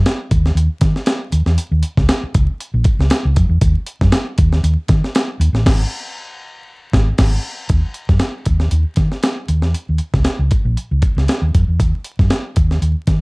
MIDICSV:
0, 0, Header, 1, 4, 480
1, 0, Start_track
1, 0, Tempo, 510638
1, 1488, Time_signature, 4, 2, 24, 8
1, 12417, End_track
2, 0, Start_track
2, 0, Title_t, "Fingered electric bass"
2, 0, Program_c, 0, 33
2, 295, Note_on_c, 0, 39, 82
2, 491, Note_off_c, 0, 39, 0
2, 517, Note_on_c, 0, 39, 82
2, 627, Note_off_c, 0, 39, 0
2, 766, Note_on_c, 0, 51, 96
2, 872, Note_off_c, 0, 51, 0
2, 1245, Note_on_c, 0, 39, 87
2, 1351, Note_off_c, 0, 39, 0
2, 1372, Note_on_c, 0, 40, 75
2, 1467, Note_off_c, 0, 40, 0
2, 1611, Note_on_c, 0, 39, 82
2, 1706, Note_off_c, 0, 39, 0
2, 1854, Note_on_c, 0, 37, 90
2, 1947, Note_off_c, 0, 37, 0
2, 2205, Note_on_c, 0, 37, 73
2, 2310, Note_off_c, 0, 37, 0
2, 2573, Note_on_c, 0, 34, 82
2, 2666, Note_off_c, 0, 34, 0
2, 2812, Note_on_c, 0, 37, 73
2, 2904, Note_off_c, 0, 37, 0
2, 3056, Note_on_c, 0, 37, 78
2, 3147, Note_off_c, 0, 37, 0
2, 3166, Note_on_c, 0, 41, 96
2, 3270, Note_off_c, 0, 41, 0
2, 3283, Note_on_c, 0, 40, 84
2, 3379, Note_off_c, 0, 40, 0
2, 3400, Note_on_c, 0, 39, 96
2, 3505, Note_off_c, 0, 39, 0
2, 3773, Note_on_c, 0, 42, 90
2, 3864, Note_off_c, 0, 42, 0
2, 4120, Note_on_c, 0, 39, 79
2, 4318, Note_off_c, 0, 39, 0
2, 4357, Note_on_c, 0, 39, 101
2, 4463, Note_off_c, 0, 39, 0
2, 4601, Note_on_c, 0, 51, 102
2, 4705, Note_off_c, 0, 51, 0
2, 5072, Note_on_c, 0, 39, 99
2, 5179, Note_off_c, 0, 39, 0
2, 5195, Note_on_c, 0, 33, 76
2, 5312, Note_off_c, 0, 33, 0
2, 5323, Note_on_c, 0, 32, 102
2, 5486, Note_off_c, 0, 32, 0
2, 6518, Note_on_c, 0, 32, 105
2, 6682, Note_off_c, 0, 32, 0
2, 6757, Note_on_c, 0, 32, 96
2, 6922, Note_off_c, 0, 32, 0
2, 7234, Note_on_c, 0, 39, 99
2, 7340, Note_off_c, 0, 39, 0
2, 7605, Note_on_c, 0, 42, 83
2, 7698, Note_off_c, 0, 42, 0
2, 7957, Note_on_c, 0, 39, 66
2, 8155, Note_off_c, 0, 39, 0
2, 8192, Note_on_c, 0, 39, 91
2, 8300, Note_off_c, 0, 39, 0
2, 8431, Note_on_c, 0, 51, 82
2, 8539, Note_off_c, 0, 51, 0
2, 8916, Note_on_c, 0, 39, 83
2, 9052, Note_off_c, 0, 39, 0
2, 9052, Note_on_c, 0, 40, 77
2, 9144, Note_off_c, 0, 40, 0
2, 9296, Note_on_c, 0, 39, 63
2, 9386, Note_off_c, 0, 39, 0
2, 9529, Note_on_c, 0, 37, 92
2, 9623, Note_off_c, 0, 37, 0
2, 9767, Note_on_c, 0, 37, 72
2, 9862, Note_off_c, 0, 37, 0
2, 10010, Note_on_c, 0, 34, 72
2, 10104, Note_off_c, 0, 34, 0
2, 10257, Note_on_c, 0, 37, 67
2, 10349, Note_off_c, 0, 37, 0
2, 10494, Note_on_c, 0, 37, 82
2, 10588, Note_off_c, 0, 37, 0
2, 10731, Note_on_c, 0, 39, 73
2, 10826, Note_off_c, 0, 39, 0
2, 10853, Note_on_c, 0, 41, 85
2, 10956, Note_off_c, 0, 41, 0
2, 10978, Note_on_c, 0, 40, 70
2, 11090, Note_off_c, 0, 40, 0
2, 11090, Note_on_c, 0, 39, 94
2, 11195, Note_off_c, 0, 39, 0
2, 11459, Note_on_c, 0, 42, 83
2, 11552, Note_off_c, 0, 42, 0
2, 11810, Note_on_c, 0, 39, 72
2, 12010, Note_off_c, 0, 39, 0
2, 12048, Note_on_c, 0, 39, 88
2, 12156, Note_off_c, 0, 39, 0
2, 12289, Note_on_c, 0, 51, 84
2, 12397, Note_off_c, 0, 51, 0
2, 12417, End_track
3, 0, Start_track
3, 0, Title_t, "Muted fingered electric bass strokes"
3, 2098, Note_on_c, 9, 29, 48
3, 2192, Note_off_c, 9, 29, 0
3, 12417, End_track
4, 0, Start_track
4, 0, Title_t, "Drums"
4, 55, Note_on_c, 9, 42, 73
4, 58, Note_on_c, 9, 38, 103
4, 149, Note_off_c, 9, 42, 0
4, 152, Note_off_c, 9, 38, 0
4, 292, Note_on_c, 9, 42, 87
4, 293, Note_on_c, 9, 36, 100
4, 386, Note_off_c, 9, 42, 0
4, 387, Note_off_c, 9, 36, 0
4, 429, Note_on_c, 9, 38, 34
4, 523, Note_off_c, 9, 38, 0
4, 537, Note_on_c, 9, 42, 84
4, 631, Note_off_c, 9, 42, 0
4, 760, Note_on_c, 9, 42, 76
4, 766, Note_on_c, 9, 36, 88
4, 771, Note_on_c, 9, 38, 37
4, 854, Note_off_c, 9, 42, 0
4, 860, Note_off_c, 9, 36, 0
4, 865, Note_off_c, 9, 38, 0
4, 903, Note_on_c, 9, 38, 30
4, 997, Note_off_c, 9, 38, 0
4, 998, Note_on_c, 9, 42, 101
4, 1006, Note_on_c, 9, 38, 120
4, 1092, Note_off_c, 9, 42, 0
4, 1100, Note_off_c, 9, 38, 0
4, 1244, Note_on_c, 9, 42, 88
4, 1338, Note_off_c, 9, 42, 0
4, 1376, Note_on_c, 9, 38, 33
4, 1470, Note_off_c, 9, 38, 0
4, 1484, Note_on_c, 9, 42, 100
4, 1578, Note_off_c, 9, 42, 0
4, 1717, Note_on_c, 9, 42, 66
4, 1811, Note_off_c, 9, 42, 0
4, 1855, Note_on_c, 9, 36, 93
4, 1860, Note_on_c, 9, 38, 38
4, 1949, Note_off_c, 9, 36, 0
4, 1954, Note_off_c, 9, 38, 0
4, 1961, Note_on_c, 9, 42, 74
4, 1963, Note_on_c, 9, 38, 110
4, 2055, Note_off_c, 9, 42, 0
4, 2057, Note_off_c, 9, 38, 0
4, 2204, Note_on_c, 9, 42, 90
4, 2207, Note_on_c, 9, 36, 103
4, 2298, Note_off_c, 9, 42, 0
4, 2301, Note_off_c, 9, 36, 0
4, 2448, Note_on_c, 9, 42, 80
4, 2542, Note_off_c, 9, 42, 0
4, 2673, Note_on_c, 9, 42, 82
4, 2680, Note_on_c, 9, 36, 92
4, 2767, Note_off_c, 9, 42, 0
4, 2774, Note_off_c, 9, 36, 0
4, 2825, Note_on_c, 9, 38, 31
4, 2916, Note_on_c, 9, 42, 97
4, 2919, Note_off_c, 9, 38, 0
4, 2924, Note_on_c, 9, 38, 118
4, 3010, Note_off_c, 9, 42, 0
4, 3018, Note_off_c, 9, 38, 0
4, 3161, Note_on_c, 9, 42, 89
4, 3166, Note_on_c, 9, 36, 94
4, 3255, Note_off_c, 9, 42, 0
4, 3260, Note_off_c, 9, 36, 0
4, 3396, Note_on_c, 9, 42, 108
4, 3398, Note_on_c, 9, 36, 127
4, 3490, Note_off_c, 9, 42, 0
4, 3492, Note_off_c, 9, 36, 0
4, 3633, Note_on_c, 9, 42, 71
4, 3727, Note_off_c, 9, 42, 0
4, 3771, Note_on_c, 9, 36, 101
4, 3780, Note_on_c, 9, 38, 39
4, 3865, Note_off_c, 9, 36, 0
4, 3874, Note_off_c, 9, 38, 0
4, 3874, Note_on_c, 9, 42, 76
4, 3876, Note_on_c, 9, 38, 111
4, 3968, Note_off_c, 9, 42, 0
4, 3970, Note_off_c, 9, 38, 0
4, 4115, Note_on_c, 9, 42, 92
4, 4122, Note_on_c, 9, 36, 100
4, 4209, Note_off_c, 9, 42, 0
4, 4216, Note_off_c, 9, 36, 0
4, 4254, Note_on_c, 9, 38, 33
4, 4348, Note_off_c, 9, 38, 0
4, 4362, Note_on_c, 9, 42, 86
4, 4456, Note_off_c, 9, 42, 0
4, 4592, Note_on_c, 9, 42, 79
4, 4599, Note_on_c, 9, 36, 99
4, 4603, Note_on_c, 9, 38, 37
4, 4686, Note_off_c, 9, 42, 0
4, 4693, Note_off_c, 9, 36, 0
4, 4697, Note_off_c, 9, 38, 0
4, 4741, Note_on_c, 9, 38, 34
4, 4835, Note_off_c, 9, 38, 0
4, 4840, Note_on_c, 9, 42, 94
4, 4849, Note_on_c, 9, 38, 115
4, 4934, Note_off_c, 9, 42, 0
4, 4943, Note_off_c, 9, 38, 0
4, 5085, Note_on_c, 9, 42, 91
4, 5179, Note_off_c, 9, 42, 0
4, 5214, Note_on_c, 9, 38, 39
4, 5308, Note_off_c, 9, 38, 0
4, 5321, Note_on_c, 9, 36, 127
4, 5322, Note_on_c, 9, 49, 91
4, 5326, Note_on_c, 9, 38, 114
4, 5415, Note_off_c, 9, 36, 0
4, 5416, Note_off_c, 9, 49, 0
4, 5420, Note_off_c, 9, 38, 0
4, 6519, Note_on_c, 9, 36, 100
4, 6525, Note_on_c, 9, 38, 105
4, 6613, Note_off_c, 9, 36, 0
4, 6619, Note_off_c, 9, 38, 0
4, 6751, Note_on_c, 9, 49, 90
4, 6755, Note_on_c, 9, 38, 112
4, 6756, Note_on_c, 9, 36, 116
4, 6845, Note_off_c, 9, 49, 0
4, 6849, Note_off_c, 9, 38, 0
4, 6850, Note_off_c, 9, 36, 0
4, 7229, Note_on_c, 9, 42, 86
4, 7235, Note_on_c, 9, 36, 117
4, 7323, Note_off_c, 9, 42, 0
4, 7329, Note_off_c, 9, 36, 0
4, 7465, Note_on_c, 9, 42, 61
4, 7559, Note_off_c, 9, 42, 0
4, 7604, Note_on_c, 9, 38, 32
4, 7605, Note_on_c, 9, 36, 84
4, 7698, Note_off_c, 9, 38, 0
4, 7699, Note_off_c, 9, 36, 0
4, 7702, Note_on_c, 9, 42, 64
4, 7705, Note_on_c, 9, 38, 94
4, 7796, Note_off_c, 9, 42, 0
4, 7799, Note_off_c, 9, 38, 0
4, 7948, Note_on_c, 9, 42, 82
4, 7957, Note_on_c, 9, 36, 86
4, 8042, Note_off_c, 9, 42, 0
4, 8051, Note_off_c, 9, 36, 0
4, 8082, Note_on_c, 9, 38, 33
4, 8176, Note_off_c, 9, 38, 0
4, 8189, Note_on_c, 9, 42, 74
4, 8283, Note_off_c, 9, 42, 0
4, 8422, Note_on_c, 9, 42, 62
4, 8433, Note_on_c, 9, 36, 85
4, 8433, Note_on_c, 9, 38, 29
4, 8516, Note_off_c, 9, 42, 0
4, 8527, Note_off_c, 9, 36, 0
4, 8527, Note_off_c, 9, 38, 0
4, 8569, Note_on_c, 9, 38, 25
4, 8663, Note_off_c, 9, 38, 0
4, 8673, Note_on_c, 9, 42, 80
4, 8681, Note_on_c, 9, 38, 110
4, 8767, Note_off_c, 9, 42, 0
4, 8775, Note_off_c, 9, 38, 0
4, 8915, Note_on_c, 9, 42, 82
4, 9009, Note_off_c, 9, 42, 0
4, 9045, Note_on_c, 9, 38, 34
4, 9139, Note_off_c, 9, 38, 0
4, 9160, Note_on_c, 9, 42, 85
4, 9254, Note_off_c, 9, 42, 0
4, 9385, Note_on_c, 9, 42, 57
4, 9479, Note_off_c, 9, 42, 0
4, 9529, Note_on_c, 9, 36, 86
4, 9531, Note_on_c, 9, 38, 36
4, 9623, Note_off_c, 9, 36, 0
4, 9625, Note_off_c, 9, 38, 0
4, 9630, Note_on_c, 9, 42, 71
4, 9633, Note_on_c, 9, 38, 88
4, 9724, Note_off_c, 9, 42, 0
4, 9727, Note_off_c, 9, 38, 0
4, 9878, Note_on_c, 9, 42, 82
4, 9885, Note_on_c, 9, 36, 91
4, 9972, Note_off_c, 9, 42, 0
4, 9979, Note_off_c, 9, 36, 0
4, 10126, Note_on_c, 9, 42, 64
4, 10220, Note_off_c, 9, 42, 0
4, 10358, Note_on_c, 9, 42, 74
4, 10364, Note_on_c, 9, 36, 83
4, 10452, Note_off_c, 9, 42, 0
4, 10458, Note_off_c, 9, 36, 0
4, 10510, Note_on_c, 9, 38, 28
4, 10604, Note_off_c, 9, 38, 0
4, 10605, Note_on_c, 9, 42, 86
4, 10614, Note_on_c, 9, 38, 107
4, 10699, Note_off_c, 9, 42, 0
4, 10708, Note_off_c, 9, 38, 0
4, 10853, Note_on_c, 9, 42, 74
4, 10854, Note_on_c, 9, 36, 84
4, 10947, Note_off_c, 9, 42, 0
4, 10948, Note_off_c, 9, 36, 0
4, 11089, Note_on_c, 9, 36, 115
4, 11093, Note_on_c, 9, 42, 93
4, 11183, Note_off_c, 9, 36, 0
4, 11187, Note_off_c, 9, 42, 0
4, 11322, Note_on_c, 9, 42, 56
4, 11416, Note_off_c, 9, 42, 0
4, 11461, Note_on_c, 9, 36, 93
4, 11466, Note_on_c, 9, 38, 31
4, 11555, Note_off_c, 9, 36, 0
4, 11560, Note_off_c, 9, 38, 0
4, 11565, Note_on_c, 9, 42, 67
4, 11567, Note_on_c, 9, 38, 104
4, 11659, Note_off_c, 9, 42, 0
4, 11661, Note_off_c, 9, 38, 0
4, 11806, Note_on_c, 9, 42, 83
4, 11813, Note_on_c, 9, 36, 102
4, 11900, Note_off_c, 9, 42, 0
4, 11907, Note_off_c, 9, 36, 0
4, 11948, Note_on_c, 9, 38, 34
4, 12042, Note_off_c, 9, 38, 0
4, 12052, Note_on_c, 9, 42, 75
4, 12146, Note_off_c, 9, 42, 0
4, 12286, Note_on_c, 9, 42, 64
4, 12290, Note_on_c, 9, 36, 91
4, 12297, Note_on_c, 9, 38, 32
4, 12380, Note_off_c, 9, 42, 0
4, 12384, Note_off_c, 9, 36, 0
4, 12391, Note_off_c, 9, 38, 0
4, 12417, End_track
0, 0, End_of_file